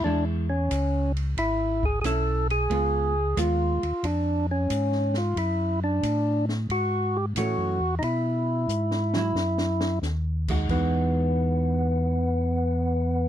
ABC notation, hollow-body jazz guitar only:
X:1
M:4/4
L:1/8
Q:"Swing" 1/4=90
K:E
V:1 name="Hollow-body jazz guitar"
[G,E] z4 z [CE] z | [G,B,^E] z [G,B,E] z4 z | z6 [E,A,C] z | z3 [F,E] z3 [G,DF] |
[E,G,DF]8 |]